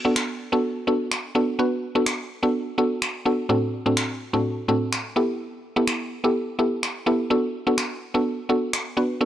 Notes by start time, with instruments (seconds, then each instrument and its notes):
0.05 synth pluck B3 D4 F#4 A4
0.16 finger snap
0.52 synth pluck B3 D4 F#4 A4
0.87 synth pluck B3 D4 F#4 A4
1.12 finger snap
1.35 synth pluck B3 D4 F#4 A4
1.59 synth pluck B3 D4 F#4 B4
1.95 synth pluck B3 D4 F#4 A4
2.06 finger snap
2.43 synth pluck B3 D4 F#4 A4
2.78 synth pluck B3 D4 F#4 A4
3.02 finger snap
3.25 synth pluck B3 D4 F#4 A4
3.49 synth pluck A2 C4 D4 F#4 A4
3.86 synth pluck A2 C4 D4 F#4 A4
3.97 finger snap
4.33 synth pluck A2 C4 D4 F#4 A4
4.68 synth pluck A2 C4 D4 F#4 A4
4.93 finger snap
5.16 synth pluck B3 E4 G4 A4
5.76 synth pluck B3 E4 G4 A4
5.88 finger snap
6.24 synth pluck B3 E4 G4 A4
6.59 synth pluck B3 E4 G4 A4
6.83 finger snap
7.06 synth pluck B3 E4 G4 A4
7.30 synth pluck B3 D4 F#4 A4
7.67 synth pluck B3 D4 F#4 A4
7.78 finger snap
8.14 synth pluck B3 D4 F#4 A4
8.49 synth pluck B3 D4 F#4 A4
8.73 finger snap
8.97 synth pluck B3 D4 F#4 B4
9.21 synth pluck B3 D4 F#4 A4